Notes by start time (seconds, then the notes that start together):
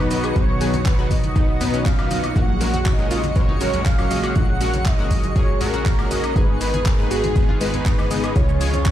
Already playing: B1 D#3 F#3 B3 F#4 B4 C#6
0.11 B2 F#3 B3 D#4 D#5, open hi-hat, shaker
0.24 G#4, closed hi-hat, high woodblock, shaker
0.36 B1 B2 F#3 B3 D#4 B4 C#5, kick, closed hi-hat, shaker
0.49 B3
0.61 B2 F#3 B3 D#4 G#4 B4, open hi-hat, shaker
0.74 B3, closed hi-hat, high bongo, high conga, shaker
0.86 B3 B4, kick, clap, closed hi-hat, shaker
0.99 B2 F#3 B3 D#4 F#4 B4
1.11 B2 F#3 B3 D#4 B4 D#5, kick, open hi-hat, high bongo, low conga, shaker
1.24 B3, closed hi-hat, high conga, shaker
1.36 B2 F#3 B3 D#4 B4, kick, closed hi-hat, shaker
1.49 B3
1.61 B2 F#3 B3 D#4 B4, open hi-hat, low conga, shaker
1.74 C#4, closed hi-hat, shaker
1.86 F5, kick, clap, closed hi-hat, shaker
1.99 B2 F#3 B3 D#4 B4, high woodblock, shaker
2.11 A#2 F#3 B3 D#4 D#5, open hi-hat, high conga, shaker
2.24 closed hi-hat, high woodblock, shaker
2.36 A#1 A#2 C#3 G#3 C#4 F#4 A#4 F#5, kick, closed hi-hat, shaker
2.49 F#3
2.61 A#2 F#3 G#3 C#4 F#4 A#4, open hi-hat, shaker
2.74 F#4, closed hi-hat, high bongo, high conga, shaker
2.86 F#3 D#5, kick, clap, closed hi-hat, shaker
2.99 A#2 F#3 G#3 C#4 F#4 A#4
3.11 A#2 G#3 C#4 F4 F#4 A#4, open hi-hat, high bongo, shaker
3.24 F#3, closed hi-hat, high conga, shaker
3.36 A#2 F#3 G#3 C#4 F#4 A#4 C#5, kick, closed hi-hat, shaker
3.49 D#4, high conga, low conga
3.61 A#2 F#3 G#3 C#4 F#4 A#4, open hi-hat, shaker
3.74 F#3, closed hi-hat, low conga, shaker
3.85 C#4 F5, kick, clap, closed hi-hat, shaker
3.99 A#2 F#3 G#3 C#4 F#4 A#4, high conga, high woodblock, shaker
4.11 A#2 F#3 G#3 C#4 F#4 D#5, open hi-hat, shaker
4.24 F#4, closed hi-hat, high woodblock, shaker
4.36 A#1 A#2 F#3 G#3 C#4 F#4 A#4 F#5, kick, closed hi-hat, shaker
4.49 F#3
4.61 A#2 G#3 C#4 F#4 A#4, open hi-hat, shaker
4.74 F#3, closed hi-hat, high bongo, high conga, shaker
4.85 F#3 D#5, kick, clap, closed hi-hat, shaker
4.99 A#2 G#3 C#4 F#4 A#4
5.10 A#2 F#3 G#3 C#4 F#4 A#4, kick, open hi-hat, high bongo, low conga, shaker
5.24 F#3, closed hi-hat, high conga, shaker
5.36 A#2 G#3 C#4 F#4 G#4 A#4 C#5, kick, closed hi-hat, shaker
5.49 F#3
5.61 A#2 F#3 G#3 C#4 F#4 A#4, open hi-hat, low conga, shaker
5.74 F#4, closed hi-hat, shaker
5.86 kick, clap, closed hi-hat, shaker
5.99 A#2 G#3 C#4 F#4 A#4, high woodblock, shaker
6.11 G#2 G#3 C#4 F#4 D#5, open hi-hat, high conga, shaker
6.24 closed hi-hat, high woodblock, shaker
6.36 G#1 G#2 D#3 G#3 B3 D#4 G#4 B4, kick, closed hi-hat, shaker
6.49 G#3
6.61 G#2 G#3 B3 D#4 B4, open hi-hat, shaker
6.74 G#4, closed hi-hat, high bongo, high conga, shaker
6.86 G#3 A#4, kick, clap, closed hi-hat, shaker
6.99 G#2 G#3 B3 D#4 B4
7.11 G#2 G#3 B3 D#4 F#4 G#4 B4, open hi-hat, high bongo, shaker
7.24 G#3, closed hi-hat, high conga, shaker
7.36 G#2 G#3 B3 D#4 B4, kick, closed hi-hat, shaker
7.48 F4, high conga, low conga
7.61 G#2 G#3 B3 D#4 B4, open hi-hat, shaker
7.74 G#3, closed hi-hat, low conga, shaker
7.86 D#4, kick, clap, closed hi-hat, shaker
7.98 G#2 G#3 B3 D#4 B4, high conga, high woodblock, shaker
8.11 C#3 G#3 B3 D#4 D#5, open hi-hat, shaker
8.24 G#4, closed hi-hat, high woodblock, shaker
8.36 C#2 C#3 F3 G#3 C#4 F4 C#5, kick, closed hi-hat, shaker
8.49 C#4, shaker
8.61 C#3 G#3 C#4 F4 G#4 C#5, open hi-hat, shaker
8.73 C#4, closed hi-hat, high bongo, high conga, shaker
8.85 C#4, kick, clap, closed hi-hat, shaker